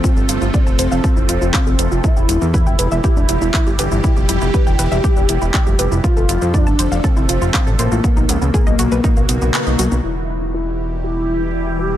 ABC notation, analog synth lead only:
X:1
M:4/4
L:1/8
Q:1/4=120
K:Ephr
V:1 name="Analog synth lead"
C8 | E2 E2 E3 G- | G8 | F2 D2 C3 ^A,- |
^A,8 | E2 E2 E3 G |]